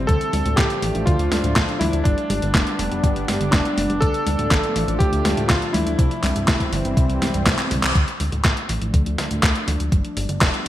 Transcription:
0.07 analog synth bass D2, synth arpeggio sound D3, analog synth pad F3 A3 D4, electric grand piano A4, kick, closed hi-hat
0.21 closed hi-hat
0.33 analog synth bass D2, synth arpeggio sound D4, open hi-hat, high conga
0.45 analog synth bass D2, synth arpeggio sound A2, closed hi-hat
0.56 analog synth bass A1, synth arpeggio sound D3, electric grand piano G4, kick, snare, clap, closed hi-hat
0.70 closed hi-hat
0.82 analog synth bass A1, synth arpeggio sound E3, open hi-hat
0.95 analog synth bass A1, synth arpeggio sound D4, closed hi-hat
1.06 analog synth bass D2, synth arpeggio sound D3, electric grand piano F4, kick, closed hi-hat
1.19 analog synth bass D2, closed hi-hat
1.31 analog synth bass D2, synth arpeggio sound D4, snare, open hi-hat, high conga
1.44 analog synth bass D2, synth arpeggio sound A2, closed hi-hat
1.56 analog synth bass D2, synth arpeggio sound D3, kick, snare, clap, closed hi-hat
1.69 closed hi-hat
1.79 analog synth bass D2, synth arpeggio sound E3, electric grand piano E4, open hi-hat, high conga
1.93 analog synth bass D2, synth arpeggio sound D4, closed hi-hat
2.04 analog synth bass G1, analog synth pad G3 B3, synth arpeggio sound G3, electric grand piano D4, kick, closed hi-hat
2.18 closed hi-hat
2.30 analog synth bass G1, synth arpeggio sound G4, open hi-hat, high conga
2.42 analog synth bass G1, synth arpeggio sound D3, closed hi-hat
2.54 analog synth bass F1, synth arpeggio sound G3, kick, snare, clap, closed hi-hat
2.67 closed hi-hat
2.79 analog synth bass F1, synth arpeggio sound A3, open hi-hat
2.91 analog synth bass F1, synth arpeggio sound G4, closed hi-hat
3.04 analog synth bass G1, synth arpeggio sound G3, kick, closed hi-hat
3.16 analog synth bass G1, closed hi-hat
3.28 analog synth bass G1, synth arpeggio sound G4, snare, open hi-hat, high conga
3.40 analog synth bass G1, synth arpeggio sound D3, closed hi-hat
3.51 analog synth bass F1, synth arpeggio sound G3, electric grand piano D4, kick, snare, clap, closed hi-hat
3.65 closed hi-hat
3.77 analog synth bass F1, synth arpeggio sound A3, open hi-hat, high conga
3.90 analog synth bass F1, synth arpeggio sound G4, closed hi-hat
4.00 analog synth bass D2, synth arpeggio sound D3, analog synth pad F3 A3, electric grand piano A4, kick, closed hi-hat
4.14 closed hi-hat
4.26 analog synth bass D2, synth arpeggio sound D4, open hi-hat, high conga
4.39 analog synth bass D2, synth arpeggio sound A2, closed hi-hat
4.51 analog synth bass A1, synth arpeggio sound D3, kick, snare, clap, closed hi-hat
4.63 closed hi-hat
4.76 analog synth bass A1, synth arpeggio sound E3, open hi-hat
4.88 analog synth bass A1, synth arpeggio sound D4, closed hi-hat
4.99 analog synth bass D2, synth arpeggio sound D3, electric grand piano G4, kick, closed hi-hat
5.12 analog synth bass D2, closed hi-hat
5.25 analog synth bass D2, synth arpeggio sound D4, snare, open hi-hat, high conga
5.37 analog synth bass D2, synth arpeggio sound A2, closed hi-hat
5.48 analog synth bass D2, synth arpeggio sound D3, electric grand piano F4, kick, snare, clap, closed hi-hat
5.62 closed hi-hat
5.73 analog synth bass D2, synth arpeggio sound E3, electric grand piano E4, open hi-hat, high conga
5.86 analog synth bass D2, synth arpeggio sound D4, closed hi-hat
5.99 analog synth bass C2, synth arpeggio sound C3, analog synth pad E3 G3 C4, kick, closed hi-hat
6.11 closed hi-hat
6.23 analog synth bass C2, synth arpeggio sound C4, clap, open hi-hat, high conga
6.35 analog synth bass C2, synth arpeggio sound G2, closed hi-hat, high conga
6.48 analog synth bass G1, synth arpeggio sound C3, kick, snare, clap, closed hi-hat
6.60 kick, closed hi-hat
6.72 analog synth bass G1, synth arpeggio sound D3, open hi-hat
6.85 analog synth bass G1, synth arpeggio sound C4, closed hi-hat
6.97 analog synth bass C2, synth arpeggio sound C3, kick, closed hi-hat
7.09 analog synth bass C2, closed hi-hat
7.22 analog synth bass C2, synth arpeggio sound C4, snare, open hi-hat, high conga
7.34 analog synth bass C2, synth arpeggio sound G2, closed hi-hat
7.46 analog synth bass C2, synth arpeggio sound C3, kick, snare, clap, closed hi-hat
7.59 clap, closed hi-hat
7.71 analog synth bass C2, synth arpeggio sound D3, open hi-hat, high conga
7.83 analog synth bass C2, synth arpeggio sound C4, clap, closed hi-hat
7.95 analog synth bass D2, synth arpeggio sound D3, analog synth pad F3 A3 D4, kick, closed hi-hat
8.08 closed hi-hat
8.20 analog synth bass D2, synth arpeggio sound D4, open hi-hat, high conga
8.32 analog synth bass D2, synth arpeggio sound A2, closed hi-hat, high conga
8.45 analog synth bass A1, synth arpeggio sound D3, kick, snare, clap, closed hi-hat
8.57 closed hi-hat
8.69 analog synth bass A1, synth arpeggio sound E3, open hi-hat
8.82 analog synth bass A1, synth arpeggio sound D4, closed hi-hat
8.94 analog synth bass D2, synth arpeggio sound D3, kick, closed hi-hat
9.06 analog synth bass D2, closed hi-hat
9.18 analog synth bass D2, synth arpeggio sound D4, snare, open hi-hat, high conga
9.31 analog synth bass D2, synth arpeggio sound A2, closed hi-hat
9.43 analog synth bass D2, synth arpeggio sound D3, kick, snare, clap, closed hi-hat
9.55 closed hi-hat
9.68 analog synth bass D2, synth arpeggio sound E3, open hi-hat, high conga
9.80 analog synth bass D2, synth arpeggio sound D4, closed hi-hat
9.92 analog synth bass G1, synth arpeggio sound G3, analog synth pad G3 B3, kick, closed hi-hat
10.05 closed hi-hat
10.17 analog synth bass G1, synth arpeggio sound G4, open hi-hat, high conga
10.29 analog synth bass G1, synth arpeggio sound D3, closed hi-hat, high conga
10.41 analog synth bass F1, synth arpeggio sound G3, kick, snare, clap, closed hi-hat
10.54 closed hi-hat

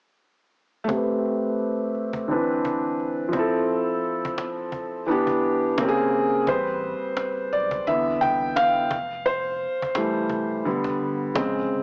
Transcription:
0.84 felt piano A3 C4
0.89 felt piano G4, cajon bass
0.95 felt piano B4
1.26 cajon slap
1.60 cajon slap
1.95 cajon slap
2.13 cajon bass
2.28 felt piano D3 C4 D4, cajon slap
2.33 felt piano E3 B4
2.65 cajon bass
3.00 cajon slap
3.29 felt piano F3 C4
3.33 felt piano E4, cajon bass
3.39 felt piano A4
3.70 cajon slap
4.04 cajon slap
4.25 cajon bass
4.38 cajon slap
4.59 cajon slap
4.72 cajon bass
5.06 felt piano E3 B3 D4, cajon slap
5.11 felt piano G4
5.27 cajon bass
5.44 cajon slap
5.77 felt piano C#3 A#3 C4, cajon slap
5.82 felt piano G4
5.88 felt piano G#4
6.13 cajon slap
6.47 sub bass A1, felt piano G3 C4 B4 C5, cajon bass
7.17 cajon slap
7.38 cajon slap
7.53 sub bass B1, felt piano D5
7.71 cajon bass
7.87 sub bass C2, felt piano D3 E3 B3 E5
8.21 sub bass C2, felt piano G5, cajon bass
8.56 felt piano F5, cajon slap
8.91 sub bass F1, cajon bass
9.26 felt piano C5
9.82 cajon bass
9.95 felt piano E3 G3 A3, cajon slap
10.16 cajon slap
10.30 sub bass F1, cajon bass
10.65 sub bass E1, felt piano D3 G3 B3
10.84 cajon bass
11.01 sub bass G1
11.35 sub bass A#1, felt piano C#3 G#3 C4, cajon slap
11.71 sub bass G1

